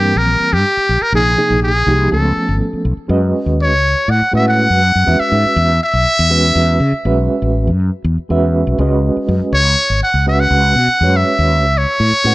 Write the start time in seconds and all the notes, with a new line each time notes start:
Already playing: G2 E3 G3 A#3 C4 G4 A#4
0.16 A#1 A#4
0.40 muted fretless electric bass stroke
0.53 G2 G4
0.77 muted fretless electric bass stroke
0.89 A#1
1.02 A#4
1.12 A#1 C3 F3 A#3 D#4 G#4
1.37 C3 F3 A#3 D#4 G#4
1.50 A#1
1.63 G#4
1.86 C2 C3 F3 A#3 D#4 G4
2.11 C#2 F3 A3 B3 C#4 A4
2.49 G#1
2.73 muted fretless electric bass stroke
2.85 B1
2.97 muted fretless electric bass stroke
3.08 F#2 G#3 C#4 F#4 B4 D#5
3.46 D#2
3.62 C#5
3.72 C#2
4.08 A2 F#5
4.22 muted fretless electric bass stroke
4.32 A2 G#3 C#4 F#4 B4 E5 F#5
4.49 F#5
4.70 F#2
4.95 F#2
5.05 E2 G#3 C#4 F#4 B4 E5
5.20 E5, muted fretless electric bass stroke
5.32 G#2
5.45 muted fretless electric bass stroke
5.56 E2
5.84 E5
5.93 B1
6.06 muted fretless electric bass stroke
6.19 E2
6.30 G#3 C#4 F#4 B4 E5
6.55 E2
6.80 C#3
6.92 muted fretless electric bass stroke
7.05 B1 G#3 C#4 F#4 B4 E5
7.42 A1
7.67 F#2
8.04 E2
8.18 muted fretless electric bass stroke
8.29 E2 G#3 C#4 F#4 B4 E5
8.67 B1
8.79 C#2 G#3 C#4 F#4 B4 D#5
9.17 muted fretless electric bass stroke
9.28 F#2
9.41 muted fretless electric bass stroke
9.52 C#2 C#5
9.90 G#1
10.02 F#5, muted fretless electric bass stroke
10.14 C#2
10.26 G#3 C#4 F#4 B4 E5 F#5
10.40 F#5
10.51 C#2
10.76 B2
10.87 muted fretless electric bass stroke
11.01 F#2 G#3 C#4 F#4 B4 C#5
11.17 E5
11.39 D#2
11.63 C#2
11.78 C#5
12.00 A2
12.12 muted fretless electric bass stroke
12.24 A2 G#3 C#4 F#4 B4 F#5